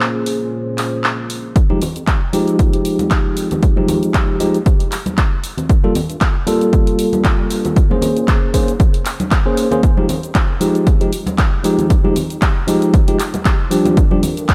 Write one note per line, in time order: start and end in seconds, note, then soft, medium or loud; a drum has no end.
0.00 1.54 A#2 medium
0.00 1.53 A#3 medium
0.00 1.53 C#4 medium
0.00 1.54 C#4 medium
0.00 1.52 F4 medium
0.00 1.53 G#4 medium
0.00 1.54 G#4 medium
0.00 1.53 C5 medium
0.00 1.54 C5 medium
0.00 clap loud
0.26 open hi-hat loud
0.78 clap medium
0.78 open hi-hat loud
1.04 clap loud
1.30 open hi-hat loud
1.56 5.40 G#3 medium
1.56 5.40 D#4 medium
1.56 5.40 G4 medium
1.56 5.40 C5 medium
1.56 kick loud
1.56 closed hi-hat medium
1.56 shaker soft
1.70 1.79 F3 medium
1.70 1.79 G#3 medium
1.70 1.79 D#4 medium
1.70 1.79 G4 loud
1.70 high conga medium
1.82 open hi-hat loud
1.82 low conga loud
1.82 shaker medium
1.96 2.03 F2 medium
1.96 closed hi-hat medium
1.96 shaker soft
2.07 kick loud
2.07 clap loud
2.07 closed hi-hat medium
2.07 shaker soft
2.33 2.75 D#2 medium
2.33 3.73 F3 loud
2.33 3.73 G#3 medium
2.33 3.74 D#4 medium
2.33 3.74 G4 loud
2.33 open hi-hat loud
2.33 high conga medium
2.33 shaker medium
2.48 closed hi-hat medium
2.48 shaker soft
2.59 kick loud
2.59 closed hi-hat medium
2.59 shaker soft
2.73 2.90 F1 medium
2.73 closed hi-hat medium
2.85 open hi-hat loud
2.85 shaker medium
2.99 3.15 F2 medium
2.99 closed hi-hat medium
2.99 high conga medium
2.99 shaker soft
3.11 kick loud
3.11 clap loud
3.11 closed hi-hat medium
3.11 shaker soft
3.37 3.55 F2 medium
3.37 open hi-hat loud
3.37 shaker medium
3.51 closed hi-hat medium
3.51 low conga medium
3.51 shaker soft
3.63 kick loud
3.63 closed hi-hat medium
3.63 shaker soft
3.76 4.37 F3 medium
3.76 4.37 G#3 medium
3.76 4.38 D#4 medium
3.76 4.38 G4 medium
3.76 high conga loud
3.88 open hi-hat loud
3.88 low conga medium
3.88 shaker medium
4.03 4.10 F2 medium
4.03 closed hi-hat medium
4.03 shaker soft
4.14 kick loud
4.14 clap loud
4.14 closed hi-hat medium
4.14 shaker soft
4.40 4.73 D#2 loud
4.40 4.57 F3 medium
4.40 4.57 G#3 medium
4.40 4.57 D#4 medium
4.40 4.57 G4 medium
4.40 open hi-hat loud
4.40 high conga medium
4.40 shaker medium
4.54 closed hi-hat medium
4.54 shaker soft
4.66 kick loud
4.66 closed hi-hat medium
4.66 shaker soft
4.80 5.08 F1 medium
4.80 closed hi-hat medium
4.92 clap medium
4.92 open hi-hat loud
4.92 shaker medium
5.06 5.14 F2 loud
5.06 closed hi-hat medium
5.06 high conga medium
5.06 shaker soft
5.18 kick loud
5.18 clap loud
5.18 closed hi-hat medium
5.18 shaker soft
5.32 5.40 G#1 medium
5.44 5.53 G1 medium
5.44 7.74 A#3 medium
5.44 7.74 D4 medium
5.44 9.79 F4 medium
5.44 open hi-hat loud
5.44 shaker medium
5.57 5.66 D2 medium
5.57 closed hi-hat medium
5.57 low conga medium
5.57 shaker soft
5.69 5.79 G1 loud
5.69 kick loud
5.69 closed hi-hat medium
5.69 shaker soft
5.83 5.93 G3 medium
5.83 5.93 A#3 medium
5.83 5.93 F4 medium
5.83 5.93 A4 loud
5.83 high conga medium
5.95 open hi-hat loud
5.95 low conga loud
5.95 shaker medium
6.10 6.17 G2 medium
6.10 closed hi-hat soft
6.10 shaker soft
6.21 kick loud
6.21 clap loud
6.21 closed hi-hat medium
6.21 shaker soft
6.46 6.89 F2 loud
6.46 7.75 G3 loud
6.46 7.75 A#3 medium
6.46 7.75 F4 medium
6.46 7.75 A4 loud
6.46 open hi-hat loud
6.46 high conga medium
6.46 shaker medium
6.61 closed hi-hat medium
6.61 shaker soft
6.73 kick loud
6.73 closed hi-hat medium
6.73 shaker soft
6.87 7.03 G1 medium
6.87 closed hi-hat medium
6.99 open hi-hat loud
6.99 shaker medium
7.13 7.29 G2 medium
7.13 closed hi-hat soft
7.13 high conga medium
7.13 shaker soft
7.25 kick loud
7.25 clap loud
7.25 closed hi-hat medium
7.25 shaker soft
7.50 7.68 G2 medium
7.50 open hi-hat loud
7.50 shaker medium
7.65 closed hi-hat soft
7.65 low conga medium
7.65 shaker soft
7.76 7.86 A#1 medium
7.76 9.81 C#4 medium
7.76 13.67 G#4 medium
7.76 13.67 C5 medium
7.76 kick loud
7.76 closed hi-hat medium
7.76 shaker soft
7.90 8.51 A#3 medium
7.90 8.51 C#4 medium
7.90 8.51 G#4 medium
7.90 8.52 C5 medium
7.90 high conga loud
8.02 open hi-hat loud
8.02 low conga medium
8.02 shaker medium
8.16 8.24 A#2 medium
8.16 closed hi-hat medium
8.16 shaker soft
8.28 kick loud
8.28 clap loud
8.28 closed hi-hat medium
8.28 shaker soft
8.54 8.86 G#2 medium
8.54 8.71 A#3 medium
8.54 8.71 C#4 medium
8.54 8.71 G#4 medium
8.54 8.71 C5 medium
8.54 kick medium
8.54 open hi-hat loud
8.54 high conga medium
8.54 shaker medium
8.68 closed hi-hat medium
8.68 shaker soft
8.80 kick loud
8.80 closed hi-hat medium
8.80 shaker soft
8.94 9.02 A#1 medium
8.94 closed hi-hat medium
9.06 clap medium
9.06 open hi-hat loud
9.06 shaker medium
9.20 closed hi-hat soft
9.20 high conga loud
9.20 shaker soft
9.31 kick loud
9.31 clap loud
9.31 closed hi-hat medium
9.31 shaker soft
9.46 9.68 A#3 medium
9.46 9.68 C#4 medium
9.46 9.68 G#4 medium
9.46 9.68 C5 medium
9.57 9.67 G#2 medium
9.57 open hi-hat loud
9.57 shaker medium
9.71 9.81 A#3 loud
9.71 9.81 C#4 medium
9.71 9.81 G#4 medium
9.71 9.81 C5 loud
9.71 closed hi-hat soft
9.71 low conga medium
9.71 shaker soft
9.83 13.67 D#4 medium
9.83 13.67 G4 medium
9.83 kick loud
9.83 closed hi-hat medium
9.83 shaker soft
9.97 10.06 F3 medium
9.97 10.07 G#3 medium
9.97 10.07 D#4 medium
9.97 10.07 G4 loud
9.97 high conga medium
10.09 open hi-hat loud
10.09 low conga medium
10.09 shaker medium
10.23 10.31 F2 medium
10.23 closed hi-hat soft
10.23 shaker soft
10.35 kick loud
10.35 clap loud
10.35 closed hi-hat medium
10.35 shaker soft
10.60 11.02 D#2 loud
10.60 10.85 F3 medium
10.60 10.85 G#3 medium
10.60 10.85 D#4 medium
10.60 10.85 G4 loud
10.60 open hi-hat loud
10.60 high conga medium
10.60 shaker medium
10.75 closed hi-hat soft
10.75 shaker soft
10.87 kick loud
10.87 closed hi-hat medium
10.87 shaker soft
11.01 11.10 F3 medium
11.01 11.10 G#3 medium
11.01 11.10 D#4 medium
11.01 11.10 G4 medium
11.01 closed hi-hat medium
11.13 open hi-hat loud
11.13 shaker medium
11.26 11.43 F2 medium
11.26 closed hi-hat soft
11.26 muted conga medium
11.26 high conga medium
11.26 shaker soft
11.38 kick loud
11.38 clap loud
11.38 closed hi-hat medium
11.38 shaker soft
11.53 11.60 D#1 loud
11.64 11.82 F2 medium
11.64 11.88 F3 medium
11.64 11.88 G#3 medium
11.64 11.88 D#4 medium
11.64 11.89 G4 loud
11.64 open hi-hat loud
11.64 shaker medium
11.79 closed hi-hat medium
11.79 low conga medium
11.79 shaker soft
11.90 kick loud
11.90 closed hi-hat medium
11.90 shaker soft
12.04 12.13 F3 medium
12.04 12.13 G#3 medium
12.04 12.14 D#4 medium
12.04 12.14 G4 loud
12.04 high conga medium
12.16 open hi-hat loud
12.16 low conga medium
12.16 shaker medium
12.30 12.38 F2 medium
12.30 closed hi-hat medium
12.30 shaker soft
12.42 kick loud
12.42 clap loud
12.42 closed hi-hat medium
12.42 shaker soft
12.67 13.00 D#2 loud
12.67 12.91 F3 loud
12.67 12.92 G#3 medium
12.67 12.92 D#4 medium
12.67 12.92 G4 loud
12.67 open hi-hat loud
12.67 high conga medium
12.67 shaker medium
12.82 closed hi-hat medium
12.82 shaker soft
12.94 kick loud
12.94 closed hi-hat medium
12.94 shaker soft
13.08 13.35 F1 medium
13.08 13.17 F3 medium
13.08 13.17 G#3 medium
13.08 13.17 D#4 medium
13.08 13.17 G4 loud
13.08 closed hi-hat medium
13.19 clap medium
13.19 open hi-hat loud
13.19 shaker medium
13.34 13.41 F2 loud
13.34 closed hi-hat medium
13.34 muted conga medium
13.34 high conga medium
13.34 shaker soft
13.45 kick loud
13.45 clap loud
13.45 closed hi-hat medium
13.45 shaker soft
13.60 13.67 G#1 medium
13.71 13.95 F3 medium
13.71 13.95 G3 medium
13.71 14.55 D4 medium
13.71 13.95 D4 medium
13.71 14.55 F4 medium
13.71 13.96 G4 loud
13.71 14.55 A4 medium
13.71 14.55 A#4 medium
13.71 open hi-hat loud
13.71 shaker medium
13.85 closed hi-hat medium
13.85 muted conga medium
13.85 low conga medium
13.85 shaker soft
13.97 kick loud
13.97 closed hi-hat medium
13.97 shaker soft
14.11 14.20 F3 medium
14.11 14.20 G3 medium
14.11 14.20 D4 medium
14.11 14.21 G4 loud
14.11 high conga medium
14.23 open hi-hat loud
14.23 low conga medium
14.23 shaker medium
14.37 14.45 G2 medium
14.37 closed hi-hat medium
14.37 shaker soft
14.49 kick loud
14.49 clap loud
14.49 closed hi-hat medium
14.49 shaker soft